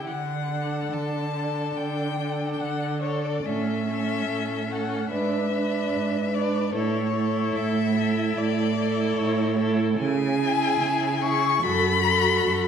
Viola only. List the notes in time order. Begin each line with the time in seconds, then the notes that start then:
0.51 D4
1.36 D4
2.19 D4
3.03 D4
3.46 C#4
3.88 C#4
4.70 C#4
5.12 D4
5.52 D4
6.34 D4
6.75 E4
7.16 E4
7.97 E4
8.76 E4
9.59 E4
10.38 E4
11.21 E4
11.64 F#4
12.04 F#4